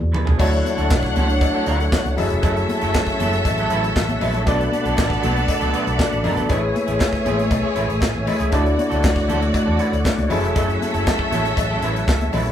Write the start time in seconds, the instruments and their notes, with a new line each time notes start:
Already playing: tine electric piano E3 E4 F#4 G#4 D5
0.00 fingered electric bass E2, muted clean electric guitar stroke, high conga
0.12 clean electric guitar E3 B3 D4 B4, floor tom, muted conga, low conga
0.25 fingered electric bass C#2, clean electric guitar E3 B3 D4 G#4, floor tom
0.38 fingered electric bass D2, tine electric piano F#3 D4 E4 F#4 C#5, clean electric guitar A3 C#4 F#4 A4, tonewheel organ A3 D4 C#5 F#5, string section D4 C#5 F#5, kick, crash, cowbell, muted conga
0.51 muted clean electric guitar stroke, closed hi-hat
0.64 muted clean electric guitar stroke, closed hi-hat, muted conga, high conga
0.77 fingered electric bass D2, clean electric guitar A3 C#4 F#4 A4, closed hi-hat
0.90 fingered electric bass B1, kick, snare, clap, cowbell, muted conga
1.02 muted clean electric guitar stroke, kick, snare, closed hi-hat
1.16 fingered electric bass C#2, clean electric guitar A3 C#4 F#4 A4, closed hi-hat, muted conga, high conga, low conga
1.28 muted clean electric guitar stroke, closed hi-hat
1.41 muted clean electric guitar stroke, kick, closed hi-hat, cowbell
1.54 clean electric guitar A3 C#4 F#4 A4
1.66 fingered electric bass D2, clean electric guitar A3 C#4 F#4 B4, closed hi-hat, muted conga
1.79 muted clean electric guitar stroke, closed hi-hat
1.92 muted clean electric guitar stroke, kick, snare, clap, cowbell
2.04 fingered electric bass C#2, muted clean electric guitar stroke, closed hi-hat, high conga
2.16 fingered electric bass F#1, tine electric piano F#3 C#4 E4 G#4 A4, string section C#4 A4 E5, tonewheel organ E5, open hi-hat, cowbell, muted conga, low conga
2.29 fingered electric bass F1, muted clean electric guitar stroke, closed hi-hat
2.42 fingered electric bass F#1, clean electric guitar F#3 C#4 E4 A4, kick, closed hi-hat, cowbell, muted conga
2.56 muted clean electric guitar stroke, closed hi-hat
2.68 muted clean electric guitar stroke, closed hi-hat, muted conga, high conga
2.81 fingered electric bass F#1, clean electric guitar F#3 C#4 E4 A4, closed hi-hat
2.94 kick, snare, clap, cowbell, muted conga
3.06 muted clean electric guitar stroke, kick, snare, closed hi-hat
3.19 fingered electric bass F#1, clean electric guitar F#3 C#4 E4 A4, closed hi-hat, muted conga, high conga, low conga
3.33 muted clean electric guitar stroke, closed hi-hat
3.45 fingered electric bass A1, muted clean electric guitar stroke, kick, closed hi-hat, cowbell, muted conga
3.57 clean electric guitar F#3 C#4 E4 A4, closed hi-hat
3.70 fingered electric bass A1, clean electric guitar F#3 C#4 E4 B4, closed hi-hat
3.83 muted clean electric guitar stroke, closed hi-hat
3.96 fingered electric bass A1, muted clean electric guitar stroke, kick, snare, clap, cowbell
4.08 muted clean electric guitar stroke, closed hi-hat, high conga
4.21 fingered electric bass A#1, clean electric guitar F#3 C#4 E4 B4, open hi-hat, cowbell, low conga
4.34 clean electric guitar F#3 C#4 E4 A4, closed hi-hat
4.45 fingered electric bass B1, tine electric piano B2 B3 D4 A4 D5, clean electric guitar F#3 B3 D4 A4, string section B3 A4 D5, tonewheel organ D5 B5, kick, closed hi-hat, cowbell, muted conga
4.59 muted clean electric guitar stroke, closed hi-hat
4.72 muted clean electric guitar stroke, closed hi-hat, high conga
4.84 fingered electric bass B1, clean electric guitar F#3 B3 D4 A4, closed hi-hat
4.97 fingered electric bass A1, kick, snare, clap, cowbell
5.10 muted clean electric guitar stroke, kick, snare
5.22 fingered electric bass B1, clean electric guitar F#3 B3 D4 A4, closed hi-hat, muted conga, high conga, low conga
5.35 muted clean electric guitar stroke, closed hi-hat
5.48 muted clean electric guitar stroke, kick, closed hi-hat, cowbell
5.60 fingered electric bass C#2, clean electric guitar F#3 B3 D4 A4, closed hi-hat
5.73 clean electric guitar F#3 B3 D4 B4, closed hi-hat, muted conga
5.86 fingered electric bass B1, muted clean electric guitar stroke, closed hi-hat
5.98 tine electric piano B2 B3 C#4 A4 D5, muted clean electric guitar stroke, kick, snare, clap, cowbell
6.05 tine electric piano D4
6.10 fingered electric bass A1, muted clean electric guitar stroke, closed hi-hat, high conga
6.23 fingered electric bass G1, clean electric guitar F#3 B3 D4 B4, open hi-hat, cowbell, muted conga, low conga
6.36 fingered electric bass G#1, clean electric guitar F#3 B3 D4 A4, closed hi-hat
6.49 fingered electric bass A1, clean electric guitar G#3 C#4 E4 G#4, tine electric piano A3 E4 G#4 B4 C#5, string section A3 G#4 C#5, tonewheel organ C#5 E5 G#5, kick, closed hi-hat, cowbell
6.62 muted clean electric guitar stroke
6.74 muted clean electric guitar stroke, closed hi-hat, muted conga, high conga
6.87 fingered electric bass A1, clean electric guitar G#3 C#4 E4 G#4, closed hi-hat
6.99 kick, snare, clap, cowbell
7.12 muted clean electric guitar stroke, kick, snare, closed hi-hat
7.25 fingered electric bass A1, clean electric guitar G#3 C#4 E4 G#4, closed hi-hat, muted conga, high conga, low conga
7.38 muted clean electric guitar stroke, closed hi-hat
7.50 fingered electric bass B1, muted clean electric guitar stroke, kick, closed hi-hat, cowbell, muted conga
7.63 clean electric guitar G#3 C#4 E4 G#4
7.75 fingered electric bass A1, clean electric guitar G#3 C#4 E4 B4, closed hi-hat
7.87 fingered electric bass A1, muted clean electric guitar stroke, closed hi-hat
8.00 fingered electric bass A2, muted clean electric guitar stroke, kick, snare, clap, cowbell, muted conga
8.14 fingered electric bass A1, muted clean electric guitar stroke, high conga
8.26 clean electric guitar G#3 C#4 E4 B4, open hi-hat, cowbell, muted conga, low conga
8.39 fingered electric bass C#2, clean electric guitar G#3 C#4 E4 G#4, closed hi-hat
8.51 fingered electric bass D2, tine electric piano D3 D4 E4 F#4 D5, clean electric guitar A3 C#4 F#4 A4, string section A3 F#4 D5, tonewheel organ D5 F#5, kick, closed hi-hat, cowbell
8.64 muted clean electric guitar stroke, closed hi-hat
8.76 muted clean electric guitar stroke, closed hi-hat, muted conga, high conga
8.90 fingered electric bass D2, clean electric guitar A3 C#4 F#4 A4, closed hi-hat
9.03 fingered electric bass C#2, kick, snare, clap, cowbell
9.15 muted clean electric guitar stroke, kick, snare, closed hi-hat
9.28 fingered electric bass D2, clean electric guitar A3 C#4 F#4 A4, closed hi-hat, muted conga, high conga, low conga
9.40 muted clean electric guitar stroke, closed hi-hat
9.53 muted clean electric guitar stroke, kick, closed hi-hat, cowbell, muted conga
9.66 fingered electric bass E2, clean electric guitar A3 C#4 F#4 A4
9.78 clean electric guitar A3 C#4 F#4 B4, closed hi-hat, muted conga
9.91 fingered electric bass D2, muted clean electric guitar stroke, closed hi-hat
10.04 muted clean electric guitar stroke, kick, snare, clap, cowbell
10.15 fingered electric bass C#2, muted clean electric guitar stroke, closed hi-hat, high conga
10.29 fingered electric bass F#1, clean electric guitar F#3 C#4 E4 B4, tine electric piano F#3 C#4 E4 G#4 A4, string section C#4 A4 E5, tonewheel organ E5, open hi-hat, cowbell, low conga
10.42 fingered electric bass F1, clean electric guitar F#3 C#4 E4 A4, closed hi-hat
10.55 fingered electric bass F#1, clean electric guitar F#3 C#4 E4 A4, kick, closed hi-hat, cowbell
10.68 muted clean electric guitar stroke, closed hi-hat
10.81 muted clean electric guitar stroke, closed hi-hat, muted conga, high conga
10.93 fingered electric bass F#1, clean electric guitar F#3 C#4 E4 A4, closed hi-hat
11.06 kick, snare, clap, cowbell
11.19 muted clean electric guitar stroke, kick
11.31 fingered electric bass A1, clean electric guitar F#3 C#4 E4 A4, closed hi-hat, muted conga, high conga, low conga
11.45 muted clean electric guitar stroke, closed hi-hat
11.57 fingered electric bass A1, muted clean electric guitar stroke, kick, closed hi-hat, cowbell
11.71 clean electric guitar F#3 C#4 E4 A4
11.82 fingered electric bass A1, clean electric guitar F#3 C#4 E4 B4, closed hi-hat, muted conga
11.96 muted clean electric guitar stroke, closed hi-hat
12.08 fingered electric bass C#2, kick, snare, clap, cowbell, muted conga
12.20 muted clean electric guitar stroke, closed hi-hat, high conga
12.33 fingered electric bass A#1, clean electric guitar F#3 C#4 E4 B4, open hi-hat, cowbell, muted conga, low conga
12.46 muted clean electric guitar stroke, closed hi-hat